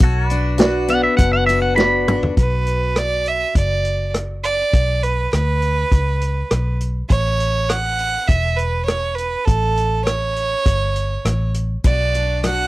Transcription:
0.00 B1 B2 F#4 A4, kick, closed hi-hat
0.05 C#5
0.25 B4 D5
0.30 D4, closed hi-hat
0.58 F#3 F#4 B4 D5, snare, closed hi-hat
0.89 B3 F#5, closed hi-hat
1.04 E5
1.17 F#1 F#2 D4 F#5, kick, closed hi-hat
1.33 F#5
1.46 F#4 E5, closed hi-hat
1.62 F#5
1.76 F#3 F#4 B4 D5 B5, snare
2.08 D4, mid tom
2.23 floor tom
2.37 B1 B4, kick, closed hi-hat
2.67 closed hi-hat
2.96 D5, cross-stick, closed hi-hat
3.26 E5, closed hi-hat
3.55 F#1 D5, kick, closed hi-hat
3.85 closed hi-hat
4.14 cross-stick, closed hi-hat
4.43 D5, closed hi-hat
4.73 B1, kick, closed hi-hat
5.03 B4, closed hi-hat
5.33 D2 B4, cross-stick, closed hi-hat
5.62 closed hi-hat
5.92 C#2, kick, closed hi-hat
6.22 closed hi-hat
6.51 B1, cross-stick, closed hi-hat
6.81 closed hi-hat
7.09 A1 C#5, kick, closed hi-hat
7.40 closed hi-hat
7.69 F#5, cross-stick, closed hi-hat
7.99 closed hi-hat
8.28 E1 E5, kick, closed hi-hat
8.56 B4, closed hi-hat
8.85 C#5, cross-stick, closed hi-hat
9.15 B4, closed hi-hat
9.45 A1 A4, kick, closed hi-hat
9.77 closed hi-hat
10.04 C#5, cross-stick, closed hi-hat
10.36 closed hi-hat
10.66 G1, kick, closed hi-hat
10.96 closed hi-hat
11.25 A1, cross-stick, closed hi-hat
11.54 closed hi-hat
11.84 B1 B2 F#4 D5, kick, closed hi-hat
12.14 D4, closed hi-hat
12.44 F#3 F#4 F#5, cross-stick, closed hi-hat

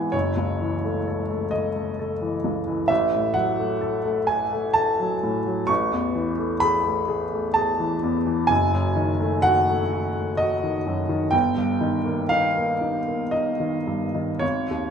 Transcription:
Already playing: G#2 E3 B3 G#4 F#5 G#5
0.12 F#1 C#5
0.37 C#2
0.60 E3
0.84 A3
1.07 A4
1.31 A3
1.51 A4 D#5
1.76 A3
1.99 A4
2.22 E3
2.44 C#2
2.67 E3
2.88 A1 E5
3.13 A2
3.34 F#3 F#5
3.59 A3
3.81 A4
4.05 A3
4.27 A4 G#5
4.53 A3
4.74 A4 A5
5.00 F#3
5.23 A2
5.46 F#3
5.67 A1 C#6
5.93 E2
6.15 E3
6.38 A3
6.60 G#4 B5
6.85 A3
7.08 G#4
7.33 A3
7.54 G#4 A5
7.79 E3
8.03 E2
8.26 E3
8.47 F#1 G#5
8.73 F#2
8.96 D#3
9.20 A3
9.42 F#4 F#5
9.68 A3
9.93 F#4
10.16 A3
10.37 F#4 D#5
10.63 D#3
10.87 F#2
11.09 D#3
11.31 G1 G5
11.57 G2
11.81 D#3
12.06 A#3
12.29 D#4 F5
12.57 A#3
12.81 D#4
13.08 A#3
13.31 D#4 D#5
13.60 D#3
13.87 G2
14.15 D#3
14.39 G#1 C#5
14.71 D#2

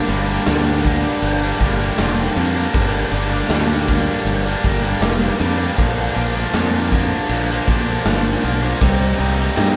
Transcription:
Already playing: G2 A#3 D4
0.08 G1 D3 G3 A#3 D4, crash
0.27 G3 A#3 D4, snare
0.46 D2 G2 D3 G3 A#3 D4, snare, crash
0.66 G3 A#3 D4
0.84 D3 G3 A#3 D4, kick, crash
1.22 G1, crash
1.41 G3 A#3 D4
1.60 G1 D3 G3 A#3 D4, kick, crash
1.79 G3 A#3 D4
1.97 F1 G2 D3 G3 A#3 D4, snare, crash
2.35 F2 D3 G3 A#3 D4, crash
2.55 G3 A#3 D4
2.74 G1 G2 D3 G3 A#3 D4, kick, crash
3.12 G1 D3 G3 A#3 D4, crash
3.30 G3 A#3 D4, snare
3.49 D2 G2 D3 G3 A#3 D4, snare, crash
3.68 G3 A#3 D4
3.88 D3 G3 A#3 D4, kick, crash
4.25 G1, crash
4.45 G3 A#3 D4
4.63 G1 D3 G3 A#3 D4, kick, crash
4.82 G3 A#3 D4
5.00 F1 G2 D3 G3 A#3 D4, snare, crash
5.38 F2 D3 G3 A#3 D4, crash
5.57 G3 A#3 D4
5.76 A#1 A#2 D3 F3 A#3 D4, kick, crash
6.14 A#1 D3 F3 A#3 D4, crash
6.34 F3 A#3 D4, snare
6.53 F2 A#2 D3 F3 A#3 D4, snare, crash
6.73 F3 A#3 D4
6.92 D3 F3 A#3 D4, kick, crash
7.29 A#1, crash
7.49 F3 A#3 D4
7.67 A#1 D3 F3 A#3 D4, kick, crash
7.86 F3 A#3 D4
8.05 G1 A#2 D3 F3 A#3 D4, snare, crash
8.43 B1 D3 F3 A#3 D4, crash
8.61 F3 A#3 D4
8.81 C2 C3 G3 C4 D#4, kick, crash
9.18 C2 C3 G3 C4 D#4, crash
9.37 G3 C4 D#4, snare
9.55 G2 C3 G3 C4 D#4, snare, crash

